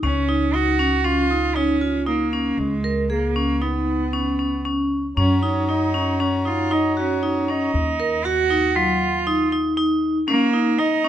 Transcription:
0.03 2.54 C#2 medium
0.03 0.23 C#4 medium
0.03 0.56 C#4 medium
0.28 0.48 D#4 medium
0.54 0.73 D#4 medium
0.54 1.06 F#4 medium
0.79 0.99 C#4 medium
1.04 1.24 C#4 medium
1.04 1.57 F4 loud
1.31 1.50 D#4 medium
1.56 2.07 C#4 medium
1.56 1.75 D#4 medium
1.81 2.01 F4 medium
2.07 2.60 A#3 medium
2.07 2.26 D#4 medium
2.33 2.72 C#4 medium
2.58 5.13 C#2 medium
2.58 3.10 G#3 medium
2.84 3.04 A#4 medium
3.10 3.63 A#3 medium
3.10 3.29 G#4 medium
3.36 3.55 C#4 medium
3.62 4.65 B3 medium
3.62 4.01 D#4 medium
4.13 4.33 C#4 medium
4.39 4.59 C#4 medium
4.65 5.05 C#4 medium
5.17 7.70 F#2 medium
5.17 5.37 C#4 medium
5.17 5.71 C#4 medium
5.17 7.71 F#4 medium
5.17 7.71 C#5 medium
5.17 7.71 A#5 medium
5.43 5.62 D#4 medium
5.69 5.88 D#4 medium
5.69 6.22 D#4 medium
5.94 6.14 C#4 medium
6.20 6.40 C#4 medium
6.20 6.49 C#4 medium
6.45 6.65 D#4 medium
6.45 6.74 F4 medium
6.71 6.91 D#4 medium
6.71 6.98 D#4 medium
6.97 7.51 C#4 medium
6.97 7.17 F#4 medium
7.23 7.42 D#4 medium
7.48 7.87 C#4 medium
7.48 8.26 D#4 medium
7.74 10.24 D#2 medium
8.00 8.19 A#4 medium
8.25 8.77 F#4 medium
8.25 8.45 F#4 medium
8.50 8.70 D#4 medium
8.76 9.15 F#3 medium
8.76 9.52 F4 medium
9.27 9.46 D#4 medium
9.52 9.72 D#4 medium
9.77 10.16 D#4 medium
10.28 10.80 A#3 loud
10.28 10.47 C#4 medium
10.53 10.73 D#4 medium
10.78 11.09 D#4 loud
10.78 10.98 D#4 medium
11.04 11.09 C#4 medium

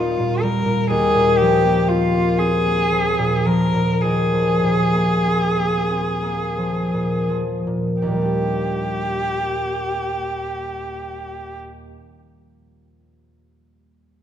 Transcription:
0.00 0.89 D#2 soft
0.00 0.17 A#2 soft
0.00 0.42 G3 soft
0.00 1.64 A#3 soft
0.00 1.89 C4 soft
0.00 0.44 F4 soft
0.19 0.64 A#2 soft
0.42 0.93 G3 soft
0.42 0.89 A#4 medium
0.65 0.93 A#2 soft
0.90 4.02 D#2 soft
0.90 1.39 G#4 medium
1.14 3.17 A#2 soft
1.38 2.90 F3 soft
1.38 1.91 G4 medium
1.65 2.13 A#3 soft
1.89 2.39 C4 soft
1.89 2.41 F4 medium
2.15 2.64 A#3 soft
2.39 5.24 C4 soft
2.39 3.47 G#4 medium
2.66 4.92 A#3 soft
2.91 3.45 F3 soft
3.18 3.73 A#2 soft
3.46 4.31 F3 soft
3.46 4.03 A#4 medium
3.74 4.62 A#2 soft
4.01 7.94 D#2 soft
4.01 7.30 G#4 medium
4.32 6.56 F3 soft
4.63 6.92 A#2 soft
4.93 5.56 A#3 soft
5.25 5.89 C4 soft
5.57 6.21 A#3 soft
5.91 8.10 C4 soft
6.23 8.15 A#3 soft
6.57 7.28 F3 soft
6.93 7.66 A#2 soft
7.29 8.09 F3 soft
7.67 8.06 A#2 soft
8.01 11.92 D#2 soft
8.01 11.58 G4 soft
8.07 11.97 A#2 soft
8.12 11.69 G3 soft
8.16 11.73 A#3 soft
8.22 11.79 D4 soft
8.22 11.83 G4 soft

